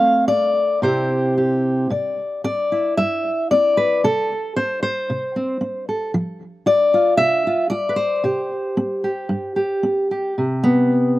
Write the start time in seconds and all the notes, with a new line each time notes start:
Already playing: A3 C4 F5
0.28 D5
0.82 C3 C4 E4 G4 C5
1.38 G4
1.90 C3 D5
2.44 C4 D5
2.72 E4
2.97 G2 E5
3.51 C4 D5
3.77 B4
4.04 C3 A4
4.56 C4 C5
4.83 C5
5.10 C3
5.36 C4
5.61 C4
5.89 A4
6.14 F3
6.66 F4 D5
6.94 F4
7.17 C3 E5
7.47 F4
7.70 F4 D5
7.89 B4
7.96 C5
8.24 C3 G4
8.77 C4
9.04 G4
9.29 G2
9.56 G4
9.83 C4
10.11 G4
10.38 C3
10.64 B3